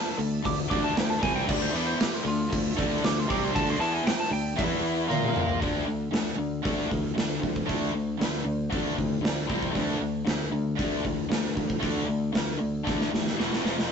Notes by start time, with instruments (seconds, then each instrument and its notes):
Already playing: tonewheel organ D4 A4 E5, lead electric guitar A5
0.18 fingered electric bass D2, overdriven electric guitar D3 A3, open hi-hat
0.43 fingered electric bass D2, overdriven electric guitar D3 A3, lead electric guitar D6, kick, open hi-hat
0.68 fingered electric bass D2, overdriven electric guitar D3 A3 D4, lead electric guitar D6, kick, open hi-hat
0.84 lead electric guitar A5
0.95 fingered electric bass D2, overdriven electric guitar D3 A3, lead electric guitar G5, snare, open hi-hat
1.10 lead electric guitar A5
1.20 fingered electric bass C2, overdriven electric guitar C3 G3 C4, lead electric guitar G#5, kick, open hi-hat
1.36 lead electric guitar G5
1.46 fingered electric bass D2, overdriven electric guitar D3 A3 D4, lead electric guitar D5, kick, crash
1.62 lead electric guitar C5
1.72 fingered electric bass E2, overdriven electric guitar E3 B3 E4, lead electric guitar D5, open hi-hat
1.86 lead electric guitar C5
1.98 lead electric guitar G4, muted fingered electric bass stroke, muted overdriven electric guitar stroke, snare, open hi-hat
2.14 lead electric guitar F4
2.24 fingered electric bass D2, overdriven electric guitar D3 A3, open hi-hat
2.28 lead electric guitar F4
2.50 fingered electric bass D2, overdriven electric guitar D3 A3, kick, open hi-hat
2.77 fingered electric bass D2, overdriven electric guitar D3 A3 D4, kick, open hi-hat
3.03 fingered electric bass D2, overdriven electric guitar D3 A3, lead electric guitar D6, snare, open hi-hat
3.20 lead electric guitar C6
3.28 fingered electric bass C2, overdriven electric guitar C3 G3 C4, lead electric guitar D6, kick, open hi-hat
3.44 lead electric guitar C6
3.53 fingered electric bass D2, overdriven electric guitar D3 A3 D4, lead electric guitar A5, kick, open hi-hat
3.70 lead electric guitar C6
3.79 fingered electric bass E2, overdriven electric guitar E3 B3 E4, lead electric guitar A5, open hi-hat
3.94 lead electric guitar G#5
4.05 lead electric guitar G5, muted overdriven electric guitar stroke, muted fingered electric bass stroke, snare, open hi-hat
4.20 lead electric guitar A5
4.31 fingered electric bass D2, overdriven electric guitar D3 A3, lead electric guitar G5, open hi-hat
4.56 fingered electric bass E2, overdriven electric guitar E3 B3 E4, tonewheel organ E3 B3 E4, lead electric guitar E5, kick, open hi-hat
4.85 open hi-hat
5.08 fingered electric bass A#2, overdriven electric guitar A#3 F4 A#4, high tom
5.12 tonewheel organ A#3 F4 C5
5.23 mid tom
5.36 mid tom
5.49 floor tom
5.60 fingered electric bass D2, overdriven electric guitar D3 A3 D4, kick, open hi-hat
5.86 fingered electric bass D2, overdriven electric guitar D3 A3
6.12 fingered electric bass D2, overdriven electric guitar D3 A3, snare, open hi-hat
6.37 fingered electric bass D2, overdriven electric guitar D3 A3
6.63 fingered electric bass D2, overdriven electric guitar D3 A3 D4, kick, open hi-hat
6.89 fingered electric bass D2, overdriven electric guitar D3 A3, kick
7.15 fingered electric bass D2, overdriven electric guitar D3 A3, snare, open hi-hat
7.40 fingered electric bass D2, overdriven electric guitar D3 A3, kick
7.56 kick
7.66 fingered electric bass D2, overdriven electric guitar D3 A3 D4, kick, open hi-hat
7.93 fingered electric bass D2, overdriven electric guitar D3 A3
8.19 fingered electric bass D2, overdriven electric guitar D3 A3, snare, open hi-hat
8.44 fingered electric bass D2, overdriven electric guitar D3 A3
8.70 fingered electric bass D2, overdriven electric guitar D3 A3 D4, kick, open hi-hat
8.95 fingered electric bass D2, overdriven electric guitar D3 A3, kick
9.21 fingered electric bass D2, overdriven electric guitar D3 A3, snare, open hi-hat
9.47 fingered electric bass C2, overdriven electric guitar C3 G3 C4, kick
9.63 kick
9.71 fingered electric bass D2, overdriven electric guitar D3 A3 D4
9.75 overdriven electric guitar A3 D4, kick, open hi-hat
9.98 fingered electric bass D2, overdriven electric guitar D3 A3
10.02 overdriven electric guitar D3
10.25 fingered electric bass D2, overdriven electric guitar D3 A3, snare, open hi-hat
10.51 fingered electric bass D2, overdriven electric guitar D3 A3
10.77 fingered electric bass D2, overdriven electric guitar D3 A3 D4, kick, open hi-hat
11.03 fingered electric bass D2, overdriven electric guitar D3 A3, kick
11.29 fingered electric bass D2, overdriven electric guitar D3 A3, snare, open hi-hat
11.56 fingered electric bass D2, overdriven electric guitar D3 A3, kick
11.70 kick
11.80 fingered electric bass D2, overdriven electric guitar D3 A3 D4, kick, open hi-hat
12.06 fingered electric bass D2, overdriven electric guitar D3 A3
12.32 fingered electric bass D2, overdriven electric guitar D3 A3, snare, open hi-hat
12.58 fingered electric bass D2, overdriven electric guitar D3 A3
12.84 overdriven electric guitar D3 A3 D4, kick, snare
12.88 fingered electric bass D2
13.01 snare
13.11 fingered electric bass D#2, overdriven electric guitar D3 A3, snare
13.27 snare
13.36 fingered electric bass E1, overdriven electric guitar E2 B2 E3, snare
13.53 snare
13.63 fingered electric bass F1, overdriven electric guitar F2 C3 F3, snare
13.79 snare
13.88 overdriven electric guitar D3